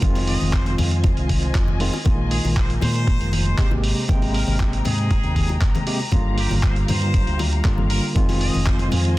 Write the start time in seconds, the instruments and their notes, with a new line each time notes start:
0.01 fingered electric bass F1, tine electric piano D#3 G#3 C4 F4, string section F4 C5 D#5 G#5, kick, closed hi-hat, high conga
0.15 open hi-hat, high bongo
0.28 trumpet section D#5, open hi-hat
0.41 fingered electric bass F1, high conga
0.53 trumpet section C5, kick, clap
0.66 trumpet section C5, closed hi-hat, high bongo
0.78 fingered electric bass F2, open hi-hat, high conga, low conga
0.91 closed hi-hat
1.04 kick, closed hi-hat, high bongo
1.17 fingered electric bass C2, closed hi-hat
1.29 kick, open hi-hat, high conga
1.43 closed hi-hat
1.55 fingered electric bass F1, kick, clap, closed hi-hat, high bongo
1.68 high conga
1.80 tine electric piano D#3 G#3 C4 F4, open hi-hat
1.93 high bongo
2.05 fingered electric bass A#1, tine electric piano D#3 G#3 A#3 F4, string section A#3 A#4, kick, closed hi-hat, high conga
2.31 trumpet section G#4, open hi-hat
2.44 fingered electric bass A#1, high bongo, high conga
2.57 trumpet section C5, kick, clap, closed hi-hat
2.70 closed hi-hat
2.81 fingered electric bass A#2, trumpet section C5, open hi-hat, high bongo, high conga, low conga
2.95 closed hi-hat
3.07 kick, closed hi-hat
3.20 fingered electric bass F1, closed hi-hat
3.32 trumpet section C5, open hi-hat, high bongo, high conga
3.46 closed hi-hat
3.58 fingered electric bass G#1, tine electric piano C3 G#3 A#3 G4, trumpet section C5, kick, clap, closed hi-hat
3.71 high bongo, high conga
3.84 string section G#3 C5 G5 A#5, open hi-hat
4.08 fingered electric bass G#1, tine electric piano C3 G#3 A#3 G5, kick, closed hi-hat, high conga
4.22 open hi-hat, high bongo
4.34 trumpet section A#4, open hi-hat
4.47 fingered electric bass G#1, trumpet section A#4, high conga
4.59 kick, clap, high bongo
4.73 closed hi-hat
4.85 fingered electric bass G#2, trumpet section G#4, open hi-hat, high conga, low conga
4.98 closed hi-hat
5.11 kick, closed hi-hat, high bongo
5.23 fingered electric bass D#2, closed hi-hat
5.36 kick, open hi-hat, high conga
5.49 closed hi-hat, high bongo
5.61 fingered electric bass G#1, kick, clap, closed hi-hat
5.75 closed hi-hat, high conga
5.86 tine electric piano C3 G#3 A#3 G4, open hi-hat
6.00 high bongo
6.11 fingered electric bass G1, tine electric piano D3 G3 A#3 F4, string section G3 G4 F5, kick, closed hi-hat, high bongo, high conga
6.38 trumpet section G4, open hi-hat
6.51 fingered electric bass G1, high bongo, high conga
6.63 trumpet section C5, kick, clap
6.76 closed hi-hat
6.88 fingered electric bass G2, trumpet section C5, open hi-hat, high conga, low conga
7.01 closed hi-hat, high bongo
7.14 kick, closed hi-hat
7.27 fingered electric bass D2, closed hi-hat
7.39 open hi-hat, high bongo, high conga
7.53 closed hi-hat
7.64 fingered electric bass G1, tine electric piano D3 G3 A#3 F4, kick, clap, closed hi-hat
7.78 high conga
7.90 trumpet section A#4, open hi-hat, high bongo
8.15 fingered electric bass F1, tine electric piano D#3 G#3 C4 F4, string section F4 C5 D#5 G#5, kick, closed hi-hat, high conga
8.29 open hi-hat, high bongo
8.41 trumpet section D#5, open hi-hat
8.54 fingered electric bass F1, high conga
8.66 trumpet section C5, kick, clap
8.79 trumpet section C5, closed hi-hat, high bongo
8.91 fingered electric bass F2, open hi-hat, high conga, low conga
9.05 closed hi-hat